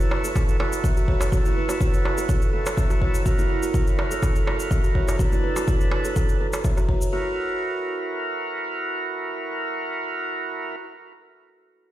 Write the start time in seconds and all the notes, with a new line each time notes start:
Already playing: E4 F#4 A4
0.00 shaker
0.11 darbuka tek
0.24 A4, shaker
0.36 A4, kick, darbuka ka, shaker
0.49 shaker
0.60 E4 F#4 A4, darbuka tek
0.73 shaker
0.84 E5, kick, shaker
0.97 F#4, shaker
1.08 C#5, kick
1.21 darbuka ka, shaker
1.32 E4 F#4 A4, kick, shaker
1.45 E4, shaker
1.57 B4
1.69 F#4, darbuka ka, shaker
1.81 C#5, kick, shaker
1.94 shaker
2.05 darbuka tek
2.18 A4, shaker
2.29 A4, kick, shaker
2.42 shaker
2.53 E4 F#4 A4
2.66 darbuka tek, shaker
2.77 E5, kick, shaker
2.90 F#4, darbuka ka, shaker
3.02 C#5, kick
3.14 shaker
3.26 E4 F#4 A#4, kick, shaker
3.39 E4, shaker
3.50 A#4
3.63 F#4, shaker
3.74 C#5, kick, shaker
3.87 shaker
3.99 darbuka tek
4.11 A4, shaker
4.22 A4, kick, darbuka ka, shaker
4.35 shaker
4.47 E4 F#4 A4 A#4, darbuka tek
4.60 shaker
4.71 E5, kick, shaker
4.84 F#4, shaker
4.95 C#5, kick
5.08 darbuka ka, shaker
5.19 D4 F#4 A4 B4, kick, shaker
5.32 E4, shaker
5.44 B4
5.56 F#4, darbuka ka, darbuka tek, shaker
5.68 C#5, kick, shaker
5.81 shaker
5.91 darbuka tek
6.05 A4, shaker
6.16 A4, kick, shaker
6.29 shaker
6.40 D4 A4 B4
6.53 darbuka tek, shaker
6.64 E5, kick, shaker
6.77 F#4, darbuka ka, shaker
6.89 C#5, kick
7.02 shaker
7.13 E4 F#4 A#4